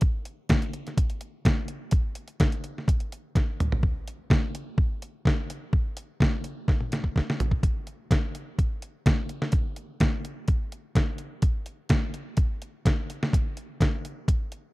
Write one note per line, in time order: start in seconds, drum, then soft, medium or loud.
0.01 kick loud
0.01 closed hi-hat medium
0.25 closed hi-hat medium
0.49 kick loud
0.49 snare loud
0.49 closed hi-hat loud
0.62 closed hi-hat soft
0.73 closed hi-hat medium
0.87 snare soft
0.87 closed hi-hat soft
0.97 kick loud
0.97 closed hi-hat loud
1.10 closed hi-hat soft
1.21 closed hi-hat medium
1.45 kick loud
1.45 snare loud
1.45 closed hi-hat medium
1.68 closed hi-hat medium
1.91 kick loud
1.91 closed hi-hat loud
2.15 closed hi-hat medium
2.28 closed hi-hat medium
2.40 kick loud
2.40 snare loud
2.40 closed hi-hat loud
2.52 closed hi-hat soft
2.64 closed hi-hat medium
2.78 snare soft
2.88 kick loud
2.88 closed hi-hat loud
3.00 closed hi-hat soft
3.12 closed hi-hat medium
3.35 kick loud
3.35 snare medium
3.35 closed hi-hat medium
3.60 closed hi-hat medium
3.60 mid tom medium
3.72 floor tom medium
3.83 kick loud
4.08 closed hi-hat medium
4.30 kick loud
4.30 snare loud
4.55 closed hi-hat medium
4.78 kick loud
5.02 closed hi-hat medium
5.25 kick loud
5.25 snare loud
5.50 closed hi-hat medium
5.73 kick loud
5.97 closed hi-hat medium
6.20 kick loud
6.20 snare loud
6.44 closed hi-hat medium
6.68 kick loud
6.68 snare medium
6.81 high tom soft
6.92 snare medium
6.92 closed hi-hat medium
7.04 kick medium
7.16 kick medium
7.16 snare medium
7.30 snare medium
7.40 closed hi-hat medium
7.40 floor tom loud
7.51 kick medium
7.63 kick loud
7.63 closed hi-hat medium
7.87 closed hi-hat medium
8.11 kick loud
8.11 snare loud
8.11 closed hi-hat medium
8.35 closed hi-hat medium
8.59 kick loud
8.59 closed hi-hat medium
8.82 closed hi-hat medium
9.06 kick loud
9.06 snare loud
9.06 closed hi-hat loud
9.29 closed hi-hat medium
9.42 snare medium
9.52 kick loud
9.52 closed hi-hat loud
9.76 closed hi-hat medium
10.00 kick loud
10.00 snare loud
10.00 closed hi-hat medium
10.25 closed hi-hat medium
10.48 kick loud
10.48 closed hi-hat medium
10.72 closed hi-hat medium
10.95 kick loud
10.95 snare loud
10.95 closed hi-hat medium
11.18 closed hi-hat medium
11.42 kick loud
11.42 closed hi-hat medium
11.66 closed hi-hat medium
11.89 kick loud
11.89 snare loud
11.89 closed hi-hat medium
12.14 closed hi-hat medium
12.37 kick loud
12.37 closed hi-hat medium
12.62 closed hi-hat medium
12.85 kick loud
12.85 snare loud
12.85 closed hi-hat medium
13.10 closed hi-hat medium
13.23 snare medium
13.33 kick loud
13.33 closed hi-hat loud
13.57 closed hi-hat medium
13.81 kick loud
13.81 snare loud
13.81 closed hi-hat medium
14.05 closed hi-hat medium
14.28 kick loud
14.28 closed hi-hat loud
14.52 closed hi-hat medium